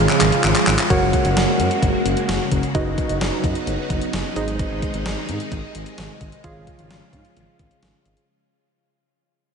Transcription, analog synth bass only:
0.21 G#1
0.44 G#1
0.67 G#1
0.90 F#1
1.02 F#1
1.25 F#1
1.36 F#1
1.59 F#2
1.82 F#1
2.05 F#1
2.29 F#1
2.52 F#1
2.75 F#1
2.86 F#1
3.09 F#1
3.21 F#1
3.44 F#2
3.67 F#1
3.90 F#1
4.13 F#1
4.36 G#1
4.71 G#1
4.94 G#1
5.06 G#1
5.29 G#2
5.52 G#1
5.75 G#1
5.98 G#1
6.21 G#1
6.44 G#1
6.56 G#1
6.79 G#1
6.91 G#1
7.13 G#2
7.36 G#1
7.59 G#1
7.83 G#1
8.06 G#1

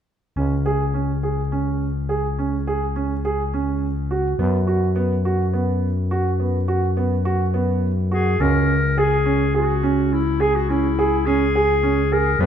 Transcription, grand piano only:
0.37 C#4
0.66 G#4
0.94 C#4
1.23 G#4
1.52 C#4
2.09 G#4
2.39 C#4
2.67 G#4
2.96 C#4
3.25 G#4
3.54 C#4
4.11 F#4
4.39 B3
4.67 F#4
4.96 B3
5.25 F#4
5.54 B3
6.11 F#4
6.40 B3
6.68 F#4
6.97 B3
7.25 F#4
7.54 B3
8.11 F#4
8.40 C#4
8.98 G#4
9.26 C#4
9.54 G#4
9.83 C#4
10.40 G#4
10.70 C#4
10.99 G#4
11.27 C#4
11.55 G#4
11.83 C#4
12.12 G#4
12.41 B3

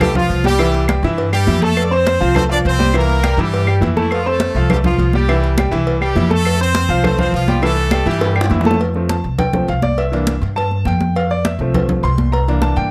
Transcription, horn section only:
0.01 G3 G4
0.17 F3 F4
0.46 G3 G4
1.32 G3 G4
1.62 A3 A4
1.84 D5
1.93 C4 C5
2.37 C4 C5
2.52 D4 D5
2.67 C4 C5
2.97 A#3 A#4
3.40 G3 G4
3.98 E3 E4
4.12 F3 F4
4.28 A3 A4
4.71 G3 G4
4.85 F3 F4
5.15 G3 G4
6.02 G3 G4
6.32 A3 A4
6.61 C4 C5
7.05 C4 C5
7.20 C4 C5
7.35 F3 F4
7.64 A3 A4
8.08 G3 G4

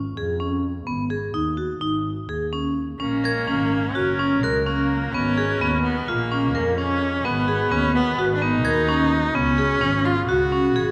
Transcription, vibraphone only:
0.17 G#4
0.40 C#4
0.87 B3
1.10 G#4
1.34 D#4
1.57 F#4
1.81 D#4
2.29 G#4
2.53 C#4
3.00 C#4
3.24 A#4
3.48 C#4
3.95 F#4
4.19 C#4
4.43 A#4
4.66 C#4
5.14 B3
5.38 G#4
5.61 B3
6.08 F4
6.32 C#4
6.55 A#4
6.78 C#4
7.25 B3
7.48 G#4
7.72 B3
8.19 F#4
8.42 B3
8.65 A#4
8.89 C#4
9.35 B3
9.58 G#4
9.81 C#4
10.29 F#4
10.52 C#4
10.76 G#4

